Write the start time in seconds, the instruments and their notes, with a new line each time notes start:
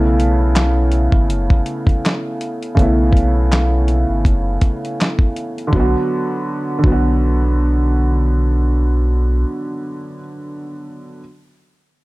Already playing: sub bass B1, upright piano C#3 A3 B3 E4
0.20 closed hi-hat
0.56 snare, clap, closed hi-hat
0.92 closed hi-hat
1.12 sub bass G#1, kick
1.28 sub bass F#1, closed hi-hat
1.50 kick
1.66 closed hi-hat
1.87 kick, closed hi-hat
2.05 snare, clap, closed hi-hat
2.41 closed hi-hat
2.63 closed hi-hat
2.75 sub bass B1, upright piano C#3 A3, kick
2.79 upright piano B3 E4, closed hi-hat
3.13 kick
3.17 closed hi-hat
3.52 snare, clap, closed hi-hat
3.88 closed hi-hat
4.09 sub bass G#1
4.25 sub bass F#1, kick, closed hi-hat
4.61 kick, closed hi-hat
4.85 closed hi-hat
5.01 snare, clap, closed hi-hat
5.19 kick
5.36 closed hi-hat
5.58 closed hi-hat
5.67 upright piano D3
5.72 sub bass B1, upright piano F#3, kick
5.76 upright piano B3
5.80 upright piano F#4
6.79 upright piano D3
6.83 sub bass B1, upright piano F#3, kick
6.87 upright piano B3
6.92 upright piano F#4